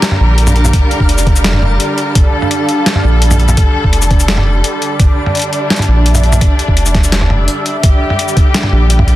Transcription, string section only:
0, 0, Header, 1, 2, 480
1, 0, Start_track
1, 0, Tempo, 355030
1, 991, Time_signature, 4, 2, 24, 8
1, 12380, End_track
2, 0, Start_track
2, 0, Title_t, "String section"
2, 0, Program_c, 0, 48
2, 0, Note_on_c, 0, 50, 81
2, 0, Note_on_c, 0, 55, 71
2, 0, Note_on_c, 0, 70, 86
2, 2897, Note_off_c, 0, 70, 0
2, 2913, Note_on_c, 0, 69, 89
2, 6738, Note_off_c, 0, 69, 0
2, 6751, Note_on_c, 0, 62, 94
2, 10538, Note_off_c, 0, 50, 0
2, 10539, Note_off_c, 0, 55, 0
2, 10577, Note_off_c, 0, 62, 0
2, 10593, Note_on_c, 0, 50, 81
2, 10593, Note_on_c, 0, 55, 76
2, 10594, Note_on_c, 0, 67, 88
2, 12380, Note_off_c, 0, 50, 0
2, 12380, Note_off_c, 0, 55, 0
2, 12380, Note_off_c, 0, 67, 0
2, 12380, End_track
0, 0, End_of_file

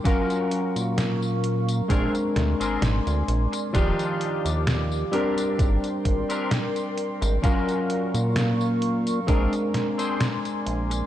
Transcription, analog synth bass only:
0, 0, Header, 1, 2, 480
1, 0, Start_track
1, 0, Tempo, 923077
1, 28, Time_signature, 4, 2, 24, 8
1, 5753, End_track
2, 0, Start_track
2, 0, Title_t, "Analog synth bass"
2, 0, Program_c, 0, 38
2, 395, Note_on_c, 0, 46, 80
2, 945, Note_off_c, 0, 46, 0
2, 987, Note_on_c, 0, 34, 97
2, 1086, Note_off_c, 0, 34, 0
2, 1228, Note_on_c, 0, 38, 80
2, 1326, Note_off_c, 0, 38, 0
2, 1354, Note_on_c, 0, 32, 45
2, 1444, Note_off_c, 0, 32, 0
2, 1466, Note_on_c, 0, 32, 99
2, 1565, Note_off_c, 0, 32, 0
2, 1595, Note_on_c, 0, 38, 87
2, 1681, Note_off_c, 0, 38, 0
2, 1707, Note_on_c, 0, 34, 89
2, 1805, Note_off_c, 0, 34, 0
2, 1947, Note_on_c, 0, 27, 103
2, 2046, Note_off_c, 0, 27, 0
2, 2314, Note_on_c, 0, 39, 89
2, 2624, Note_off_c, 0, 39, 0
2, 2907, Note_on_c, 0, 32, 84
2, 3006, Note_off_c, 0, 32, 0
2, 3146, Note_on_c, 0, 32, 91
2, 3245, Note_off_c, 0, 32, 0
2, 3755, Note_on_c, 0, 32, 109
2, 3841, Note_off_c, 0, 32, 0
2, 4234, Note_on_c, 0, 46, 88
2, 4785, Note_off_c, 0, 46, 0
2, 4826, Note_on_c, 0, 34, 101
2, 4925, Note_off_c, 0, 34, 0
2, 5545, Note_on_c, 0, 34, 82
2, 5734, Note_off_c, 0, 34, 0
2, 5753, End_track
0, 0, End_of_file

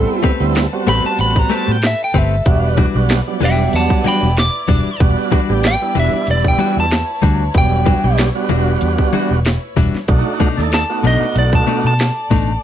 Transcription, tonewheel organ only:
0, 0, Header, 1, 2, 480
1, 0, Start_track
1, 0, Tempo, 635593
1, 1862, Time_signature, 4, 2, 24, 8
1, 9539, End_track
2, 0, Start_track
2, 0, Title_t, "Tonewheel organ"
2, 0, Program_c, 0, 16
2, 0, Note_on_c, 0, 55, 61
2, 0, Note_on_c, 0, 59, 56
2, 0, Note_on_c, 0, 60, 60
2, 0, Note_on_c, 0, 64, 73
2, 240, Note_off_c, 0, 59, 0
2, 241, Note_off_c, 0, 60, 0
2, 242, Note_off_c, 0, 55, 0
2, 242, Note_off_c, 0, 64, 0
2, 300, Note_on_c, 0, 59, 76
2, 302, Note_on_c, 0, 55, 77
2, 305, Note_on_c, 0, 60, 78
2, 307, Note_on_c, 0, 64, 91
2, 501, Note_off_c, 0, 59, 0
2, 502, Note_off_c, 0, 55, 0
2, 503, Note_off_c, 0, 60, 0
2, 504, Note_off_c, 0, 64, 0
2, 550, Note_on_c, 0, 55, 64
2, 550, Note_on_c, 0, 59, 57
2, 550, Note_on_c, 0, 66, 69
2, 552, Note_on_c, 0, 60, 60
2, 1339, Note_off_c, 0, 55, 0
2, 1339, Note_off_c, 0, 59, 0
2, 1339, Note_off_c, 0, 66, 0
2, 1340, Note_off_c, 0, 60, 0
2, 1856, Note_on_c, 0, 55, 68
2, 1856, Note_on_c, 0, 59, 58
2, 1859, Note_on_c, 0, 62, 61
2, 1859, Note_on_c, 0, 66, 72
2, 2161, Note_off_c, 0, 55, 0
2, 2161, Note_off_c, 0, 59, 0
2, 2162, Note_off_c, 0, 62, 0
2, 2162, Note_off_c, 0, 66, 0
2, 2228, Note_on_c, 0, 55, 82
2, 2231, Note_on_c, 0, 59, 77
2, 2232, Note_on_c, 0, 62, 73
2, 2234, Note_on_c, 0, 66, 93
2, 2425, Note_off_c, 0, 55, 0
2, 2426, Note_off_c, 0, 59, 0
2, 2427, Note_off_c, 0, 62, 0
2, 2428, Note_off_c, 0, 66, 0
2, 2472, Note_on_c, 0, 55, 64
2, 2473, Note_on_c, 0, 59, 59
2, 2474, Note_on_c, 0, 54, 71
2, 2475, Note_on_c, 0, 62, 59
2, 3260, Note_off_c, 0, 55, 0
2, 3260, Note_off_c, 0, 59, 0
2, 3261, Note_off_c, 0, 54, 0
2, 3261, Note_off_c, 0, 62, 0
2, 3779, Note_on_c, 0, 55, 66
2, 3783, Note_on_c, 0, 62, 64
2, 3784, Note_on_c, 0, 59, 62
2, 3786, Note_on_c, 0, 66, 75
2, 4082, Note_off_c, 0, 55, 0
2, 4085, Note_off_c, 0, 59, 0
2, 4085, Note_off_c, 0, 62, 0
2, 4086, Note_off_c, 0, 66, 0
2, 4147, Note_on_c, 0, 55, 73
2, 4152, Note_on_c, 0, 59, 66
2, 4152, Note_on_c, 0, 62, 63
2, 4152, Note_on_c, 0, 67, 78
2, 4344, Note_off_c, 0, 55, 0
2, 4346, Note_off_c, 0, 67, 0
2, 4347, Note_off_c, 0, 59, 0
2, 4347, Note_off_c, 0, 62, 0
2, 4392, Note_on_c, 0, 55, 68
2, 4395, Note_on_c, 0, 59, 65
2, 4397, Note_on_c, 0, 64, 68
2, 4399, Note_on_c, 0, 62, 61
2, 5179, Note_off_c, 0, 55, 0
2, 5181, Note_off_c, 0, 59, 0
2, 5182, Note_off_c, 0, 62, 0
2, 5182, Note_off_c, 0, 64, 0
2, 5697, Note_on_c, 0, 55, 67
2, 5701, Note_on_c, 0, 59, 66
2, 5702, Note_on_c, 0, 62, 64
2, 5703, Note_on_c, 0, 54, 79
2, 6001, Note_off_c, 0, 55, 0
2, 6003, Note_off_c, 0, 59, 0
2, 6003, Note_off_c, 0, 62, 0
2, 6004, Note_off_c, 0, 54, 0
2, 6069, Note_on_c, 0, 55, 72
2, 6070, Note_on_c, 0, 59, 66
2, 6072, Note_on_c, 0, 62, 59
2, 6074, Note_on_c, 0, 67, 77
2, 6264, Note_off_c, 0, 55, 0
2, 6265, Note_off_c, 0, 59, 0
2, 6266, Note_off_c, 0, 62, 0
2, 6267, Note_off_c, 0, 67, 0
2, 6304, Note_on_c, 0, 55, 78
2, 6308, Note_on_c, 0, 59, 80
2, 6309, Note_on_c, 0, 62, 72
2, 6309, Note_on_c, 0, 66, 87
2, 7094, Note_off_c, 0, 55, 0
2, 7096, Note_off_c, 0, 59, 0
2, 7097, Note_off_c, 0, 62, 0
2, 7097, Note_off_c, 0, 66, 0
2, 7613, Note_on_c, 0, 57, 75
2, 7615, Note_on_c, 0, 62, 74
2, 7617, Note_on_c, 0, 63, 71
2, 7617, Note_on_c, 0, 66, 91
2, 7918, Note_off_c, 0, 57, 0
2, 7919, Note_off_c, 0, 62, 0
2, 7920, Note_off_c, 0, 63, 0
2, 7920, Note_off_c, 0, 66, 0
2, 7981, Note_on_c, 0, 57, 67
2, 7983, Note_on_c, 0, 69, 81
2, 7984, Note_on_c, 0, 63, 64
2, 7985, Note_on_c, 0, 62, 67
2, 8180, Note_off_c, 0, 57, 0
2, 8181, Note_off_c, 0, 63, 0
2, 8181, Note_off_c, 0, 69, 0
2, 8182, Note_off_c, 0, 62, 0
2, 8226, Note_on_c, 0, 57, 69
2, 8226, Note_on_c, 0, 59, 62
2, 8229, Note_on_c, 0, 66, 76
2, 8230, Note_on_c, 0, 63, 61
2, 9014, Note_off_c, 0, 57, 0
2, 9014, Note_off_c, 0, 59, 0
2, 9016, Note_off_c, 0, 63, 0
2, 9016, Note_off_c, 0, 66, 0
2, 9539, End_track
0, 0, End_of_file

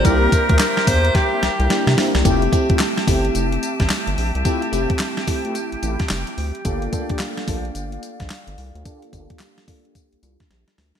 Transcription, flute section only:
0, 0, Header, 1, 2, 480
1, 0, Start_track
1, 0, Tempo, 550459
1, 42, Time_signature, 4, 2, 24, 8
1, 9591, End_track
2, 0, Start_track
2, 0, Title_t, "Flute section"
2, 0, Program_c, 0, 73
2, 0, Note_on_c, 0, 70, 98
2, 40, Note_on_c, 0, 67, 86
2, 41, Note_on_c, 0, 72, 78
2, 42, Note_on_c, 0, 76, 77
2, 1702, Note_off_c, 0, 67, 0
2, 1748, Note_off_c, 0, 72, 0
2, 1750, Note_off_c, 0, 76, 0
2, 1927, Note_off_c, 0, 70, 0
2, 1960, Note_on_c, 0, 67, 80
2, 1960, Note_on_c, 0, 76, 82
2, 1960, Note_on_c, 0, 81, 92
2, 1961, Note_on_c, 0, 79, 75
2, 5598, Note_off_c, 0, 81, 0
2, 5766, Note_off_c, 0, 76, 0
2, 5801, Note_on_c, 0, 74, 82
2, 5802, Note_on_c, 0, 77, 98
2, 9591, Note_off_c, 0, 67, 0
2, 9591, Note_off_c, 0, 74, 0
2, 9591, Note_off_c, 0, 77, 0
2, 9591, Note_off_c, 0, 79, 0
2, 9591, End_track
0, 0, End_of_file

